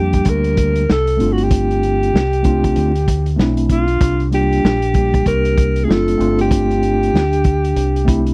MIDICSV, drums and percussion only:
0, 0, Header, 1, 2, 480
1, 0, Start_track
1, 0, Tempo, 625000
1, 1157, Time_signature, 4, 2, 24, 8
1, 6404, End_track
2, 0, Start_track
2, 0, Title_t, "Drums"
2, 100, Note_on_c, 9, 42, 54
2, 104, Note_on_c, 9, 36, 92
2, 176, Note_off_c, 9, 42, 0
2, 181, Note_off_c, 9, 36, 0
2, 192, Note_on_c, 9, 42, 77
2, 197, Note_on_c, 9, 36, 89
2, 269, Note_off_c, 9, 42, 0
2, 274, Note_off_c, 9, 36, 0
2, 341, Note_on_c, 9, 42, 53
2, 417, Note_off_c, 9, 42, 0
2, 439, Note_on_c, 9, 42, 75
2, 441, Note_on_c, 9, 36, 88
2, 516, Note_off_c, 9, 42, 0
2, 518, Note_off_c, 9, 36, 0
2, 580, Note_on_c, 9, 42, 46
2, 657, Note_off_c, 9, 42, 0
2, 687, Note_on_c, 9, 38, 101
2, 764, Note_off_c, 9, 38, 0
2, 824, Note_on_c, 9, 42, 52
2, 901, Note_off_c, 9, 42, 0
2, 922, Note_on_c, 9, 42, 62
2, 999, Note_off_c, 9, 42, 0
2, 1059, Note_on_c, 9, 42, 47
2, 1135, Note_off_c, 9, 42, 0
2, 1157, Note_on_c, 9, 42, 85
2, 1158, Note_on_c, 9, 36, 105
2, 1234, Note_off_c, 9, 36, 0
2, 1234, Note_off_c, 9, 42, 0
2, 1311, Note_on_c, 9, 42, 41
2, 1388, Note_off_c, 9, 42, 0
2, 1407, Note_on_c, 9, 42, 53
2, 1483, Note_off_c, 9, 42, 0
2, 1559, Note_on_c, 9, 42, 46
2, 1635, Note_off_c, 9, 42, 0
2, 1656, Note_on_c, 9, 38, 96
2, 1733, Note_off_c, 9, 38, 0
2, 1789, Note_on_c, 9, 42, 44
2, 1866, Note_off_c, 9, 42, 0
2, 1875, Note_on_c, 9, 42, 60
2, 1880, Note_on_c, 9, 36, 83
2, 1952, Note_off_c, 9, 42, 0
2, 1957, Note_off_c, 9, 36, 0
2, 2028, Note_on_c, 9, 36, 95
2, 2028, Note_on_c, 9, 42, 48
2, 2105, Note_off_c, 9, 36, 0
2, 2105, Note_off_c, 9, 42, 0
2, 2119, Note_on_c, 9, 42, 69
2, 2196, Note_off_c, 9, 42, 0
2, 2269, Note_on_c, 9, 42, 47
2, 2346, Note_off_c, 9, 42, 0
2, 2364, Note_on_c, 9, 36, 85
2, 2366, Note_on_c, 9, 42, 81
2, 2440, Note_off_c, 9, 36, 0
2, 2443, Note_off_c, 9, 42, 0
2, 2504, Note_on_c, 9, 42, 47
2, 2581, Note_off_c, 9, 42, 0
2, 2606, Note_on_c, 9, 38, 98
2, 2683, Note_off_c, 9, 38, 0
2, 2743, Note_on_c, 9, 42, 58
2, 2820, Note_off_c, 9, 42, 0
2, 2838, Note_on_c, 9, 36, 78
2, 2838, Note_on_c, 9, 42, 64
2, 2915, Note_off_c, 9, 36, 0
2, 2915, Note_off_c, 9, 42, 0
2, 2979, Note_on_c, 9, 42, 50
2, 3056, Note_off_c, 9, 42, 0
2, 3077, Note_on_c, 9, 36, 102
2, 3078, Note_on_c, 9, 42, 89
2, 3154, Note_off_c, 9, 36, 0
2, 3155, Note_off_c, 9, 42, 0
2, 3225, Note_on_c, 9, 42, 38
2, 3302, Note_off_c, 9, 42, 0
2, 3321, Note_on_c, 9, 42, 59
2, 3398, Note_off_c, 9, 42, 0
2, 3476, Note_on_c, 9, 42, 51
2, 3553, Note_off_c, 9, 42, 0
2, 3571, Note_on_c, 9, 38, 92
2, 3647, Note_off_c, 9, 38, 0
2, 3703, Note_on_c, 9, 42, 48
2, 3780, Note_off_c, 9, 42, 0
2, 3795, Note_on_c, 9, 42, 57
2, 3799, Note_on_c, 9, 36, 90
2, 3871, Note_off_c, 9, 42, 0
2, 3876, Note_off_c, 9, 36, 0
2, 3946, Note_on_c, 9, 36, 98
2, 3948, Note_on_c, 9, 42, 47
2, 4023, Note_off_c, 9, 36, 0
2, 4025, Note_off_c, 9, 42, 0
2, 4038, Note_on_c, 9, 36, 88
2, 4041, Note_on_c, 9, 42, 71
2, 4115, Note_off_c, 9, 36, 0
2, 4117, Note_off_c, 9, 42, 0
2, 4186, Note_on_c, 9, 42, 53
2, 4262, Note_off_c, 9, 42, 0
2, 4281, Note_on_c, 9, 36, 84
2, 4283, Note_on_c, 9, 42, 76
2, 4358, Note_off_c, 9, 36, 0
2, 4360, Note_off_c, 9, 42, 0
2, 4424, Note_on_c, 9, 42, 50
2, 4501, Note_off_c, 9, 42, 0
2, 4536, Note_on_c, 9, 38, 107
2, 4613, Note_off_c, 9, 38, 0
2, 4669, Note_on_c, 9, 42, 56
2, 4745, Note_off_c, 9, 42, 0
2, 4766, Note_on_c, 9, 42, 56
2, 4843, Note_off_c, 9, 42, 0
2, 4905, Note_on_c, 9, 42, 52
2, 4982, Note_off_c, 9, 42, 0
2, 4998, Note_on_c, 9, 36, 104
2, 5002, Note_on_c, 9, 42, 92
2, 5075, Note_off_c, 9, 36, 0
2, 5079, Note_off_c, 9, 42, 0
2, 5152, Note_on_c, 9, 42, 42
2, 5228, Note_off_c, 9, 42, 0
2, 5244, Note_on_c, 9, 42, 57
2, 5321, Note_off_c, 9, 42, 0
2, 5400, Note_on_c, 9, 42, 45
2, 5476, Note_off_c, 9, 42, 0
2, 5495, Note_on_c, 9, 38, 88
2, 5572, Note_off_c, 9, 38, 0
2, 5628, Note_on_c, 9, 42, 46
2, 5705, Note_off_c, 9, 42, 0
2, 5716, Note_on_c, 9, 42, 58
2, 5720, Note_on_c, 9, 36, 91
2, 5792, Note_off_c, 9, 42, 0
2, 5797, Note_off_c, 9, 36, 0
2, 5871, Note_on_c, 9, 42, 47
2, 5948, Note_off_c, 9, 42, 0
2, 5963, Note_on_c, 9, 42, 75
2, 6040, Note_off_c, 9, 42, 0
2, 6114, Note_on_c, 9, 42, 56
2, 6191, Note_off_c, 9, 42, 0
2, 6204, Note_on_c, 9, 36, 91
2, 6209, Note_on_c, 9, 42, 85
2, 6281, Note_off_c, 9, 36, 0
2, 6286, Note_off_c, 9, 42, 0
2, 6348, Note_on_c, 9, 42, 48
2, 6404, Note_off_c, 9, 42, 0
2, 6404, End_track
0, 0, End_of_file